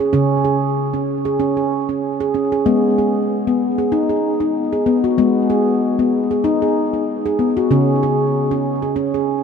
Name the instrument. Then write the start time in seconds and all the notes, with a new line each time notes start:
handpan
0.00 G#4
0.13 C#3 C#4
0.45 G#4
0.94 C#4
1.25 G#4
1.40 C#4
1.57 G#4
1.89 C#4
2.20 G#4
2.34 C#4
2.52 G#4
2.66 G#3 B3
2.98 G#4
3.47 B3
3.78 G#4
3.92 D#4
4.09 G#4
4.40 D#4
4.73 G#4
4.86 B3
5.04 F#4
5.18 G#3 B3
5.50 G#4
5.99 B3
6.31 G#4
6.44 D#4
6.62 G#4
6.94 D#4
7.26 G#4
7.39 B3
7.57 F#4
7.71 C#3 C#4
8.03 G#4
8.51 C#4
8.82 G#4
8.96 C#4
9.14 G#4